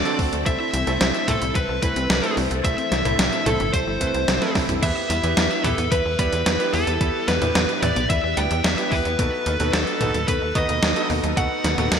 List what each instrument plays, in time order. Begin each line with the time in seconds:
Already playing: string machine C4 D4 A4 E5 F#5, lead electric guitar D5, synth bell D5
0.05 electric grand piano C4 D4 F#4 A4, synth arpeggio sound D4, closed hi-hat
0.19 analog synth bass D2, synth arpeggio sound D3, kick, open hi-hat
0.33 analog synth bass D2, synth arpeggio sound A3, closed hi-hat
0.46 analog synth bass C2, synth arpeggio sound E3, electric grand piano A3 C4 E4 A4, string machine E4, synth bell E5, lead electric guitar E5, kick, closed hi-hat
0.60 synth arpeggio sound E4
0.73 analog synth bass C2, synth arpeggio sound E3, closed hi-hat
0.87 analog synth bass C2, electric grand piano A3 C4 E4 A4, synth arpeggio sound A4, closed hi-hat
1.01 analog synth bass C2, synth arpeggio sound E3, snare, closed hi-hat
1.14 synth arpeggio sound C4, closed hi-hat
1.28 analog synth bass C2, synth arpeggio sound E3, electric grand piano A3 C4 E4 A4, synth bell A4, lead electric guitar A4, kick, closed hi-hat, mid tom
1.42 analog synth bass C2, synth arpeggio sound E4, closed hi-hat
1.55 analog synth bass C2, synth arpeggio sound E3, synth bell B4, lead electric guitar B4, kick, closed hi-hat
1.69 analog synth bass C2, synth arpeggio sound A4
1.82 analog synth bass C2, synth arpeggio sound E3, electric grand piano A3 C4 E4 B4, synth bell B4, lead electric guitar B4, kick, closed hi-hat
1.96 analog synth bass C2, synth arpeggio sound C4, closed hi-hat
2.10 analog synth bass C2, synth arpeggio sound E3, snare, closed hi-hat
2.23 electric grand piano A3 C4 E4 A4, synth arpeggio sound E4, closed hi-hat
2.37 analog synth bass C2, synth arpeggio sound E3, open hi-hat
2.51 analog synth bass C2, synth arpeggio sound A4, closed hi-hat
2.64 analog synth bass C2, synth arpeggio sound E3, electric grand piano A3 C4 E4 A4, synth bell E5, lead electric guitar E5, kick, closed hi-hat
2.78 synth arpeggio sound C4, closed hi-hat
2.92 analog synth bass C2, synth arpeggio sound E3, snare, closed hi-hat
3.05 analog synth bass C2, electric grand piano A3 C4 E4 A4, synth arpeggio sound E4, closed hi-hat, mid tom
3.19 analog synth bass C2, synth arpeggio sound E3, snare, closed hi-hat
3.33 synth arpeggio sound A4, closed hi-hat
3.46 analog synth bass C2, synth arpeggio sound E3, electric grand piano A3 C4 E4 A4, lead electric guitar A4, synth bell A4, closed hi-hat, mid tom
3.60 analog synth bass G1, synth arpeggio sound C4, closed hi-hat
3.74 analog synth bass C2, synth arpeggio sound E3, synth bell C5, lead electric guitar C5, kick, closed hi-hat, swell
3.87 analog synth bass G1, synth arpeggio sound E4
4.01 analog synth bass C2, synth arpeggio sound E3, electric grand piano A3 C4 E4 B4, kick, closed hi-hat
4.14 analog synth bass C2, synth arpeggio sound A4, closed hi-hat
4.28 analog synth bass C2, synth arpeggio sound E3, snare, closed hi-hat
4.42 electric grand piano A3 C4 E4 A4, synth arpeggio sound C4, snare, closed hi-hat
4.55 analog synth bass C2, synth arpeggio sound E3, kick, snare, open hi-hat
4.69 analog synth bass C2, synth arpeggio sound E4, closed hi-hat, mid tom
4.83 analog synth bass E2, clean electric guitar E3, electric grand piano B3 E4 G4 B4, string machine G4 B4, synth bell E5, lead electric guitar E5, kick, closed hi-hat, crash
5.10 analog synth bass E2, clean electric guitar G3, closed hi-hat
5.23 analog synth bass E2, clean electric guitar E3, electric grand piano B3 E4 G4 B4, closed hi-hat
5.37 analog synth bass E2, clean electric guitar B3, snare, closed hi-hat
5.51 closed hi-hat
5.64 analog synth bass E2, clean electric guitar E3, electric grand piano B3 E4 G4 B4, synth bell A4, lead electric guitar A4, kick, closed hi-hat, mid tom
5.78 analog synth bass E2, clean electric guitar B3, closed hi-hat
5.91 analog synth bass E2, clean electric guitar E3, lead electric guitar B4, synth bell B4, kick, closed hi-hat
6.05 analog synth bass E2
6.19 analog synth bass E2, clean electric guitar G3, electric grand piano B3 E4 G4 D5, synth bell B4, lead electric guitar B4, kick, closed hi-hat
6.32 analog synth bass E2, clean electric guitar E3, closed hi-hat
6.46 analog synth bass E2, clean electric guitar B3, snare, closed hi-hat
6.60 electric grand piano B3 E4 G4 B4, closed hi-hat
6.73 analog synth bass E2, clean electric guitar E3, lead electric guitar A4, synth bell A4, open hi-hat
6.87 analog synth bass E2, clean electric guitar B3, closed hi-hat
7.01 analog synth bass E2, clean electric guitar E3, electric grand piano B3 E4 G4 B4, kick, closed hi-hat
7.28 analog synth bass E2, clean electric guitar G3, synth bell B4, lead electric guitar B4, snare, closed hi-hat
7.41 analog synth bass E2, clean electric guitar E3, electric grand piano B3 E4 G4 B4, closed hi-hat, mid tom
7.55 analog synth bass E2, clean electric guitar B3, snare, closed hi-hat
7.69 closed hi-hat
7.82 analog synth bass E2, clean electric guitar E3, electric grand piano B3 E4 G4 B4, lead electric guitar D5, synth bell D5, closed hi-hat, mid tom
7.96 analog synth bass B1, clean electric guitar B3, closed hi-hat
8.10 analog synth bass E2, clean electric guitar E3, lead electric guitar E5, synth bell E5, kick, closed hi-hat
8.23 analog synth bass E2
8.37 analog synth bass D2, clean electric guitar G3, electric grand piano B3 E4 G4 D5, synth bell G5, lead electric guitar G5, closed hi-hat
8.51 analog synth bass E2, clean electric guitar E3, closed hi-hat
8.64 analog synth bass E2, clean electric guitar B3, synth bell E5, lead electric guitar E5, snare, closed hi-hat
8.78 electric grand piano B3 E4 G4 B4, closed hi-hat
8.92 analog synth bass E2, clean electric guitar E3, synth bell B4, lead electric guitar B4, kick, open hi-hat
9.05 analog synth bass E2, clean electric guitar B3, closed hi-hat
9.19 analog synth bass D#2, clean electric guitar B2, electric grand piano B3 D#4 F#4 A4, string machine D#4 A4, kick, closed hi-hat
9.46 analog synth bass D#2, clean electric guitar D#3, closed hi-hat
9.60 analog synth bass D#2, clean electric guitar B2, electric grand piano B3 D#4 F#4 A4, closed hi-hat
9.73 analog synth bass D#2, clean electric guitar F#3, synth bell A4, lead electric guitar A4, snare, closed hi-hat
9.87 closed hi-hat
10.01 analog synth bass D#2, clean electric guitar B2, electric grand piano B3 D#4 F#4 A4, kick, closed hi-hat, mid tom
10.14 analog synth bass D#2, clean electric guitar F#3, closed hi-hat
10.28 analog synth bass D#2, clean electric guitar B2, synth bell B4, lead electric guitar B4, kick, closed hi-hat
10.42 analog synth bass D#2
10.55 analog synth bass D#2, clean electric guitar D#3, electric grand piano B3 D#4 F#4 B4, synth bell D#5, lead electric guitar D#5, kick, closed hi-hat
10.69 analog synth bass D#2, clean electric guitar B2, closed hi-hat
10.83 analog synth bass D#2, clean electric guitar F#3, snare, closed hi-hat
10.96 electric grand piano B3 D#4 F#4 A4, closed hi-hat
11.10 analog synth bass D#2, clean electric guitar B2, open hi-hat
11.24 analog synth bass D#2, clean electric guitar F#3, closed hi-hat
11.37 analog synth bass D#2, clean electric guitar B2, electric grand piano B3 D#4 F#4 A4, synth bell F#5, lead electric guitar F#5, kick, closed hi-hat
11.64 analog synth bass D#2, clean electric guitar D#3, snare, closed hi-hat
11.78 analog synth bass D#2, clean electric guitar B2, electric grand piano B3 D#4 F#4 A4, closed hi-hat, mid tom
11.92 analog synth bass D#2, clean electric guitar F#3, snare, closed hi-hat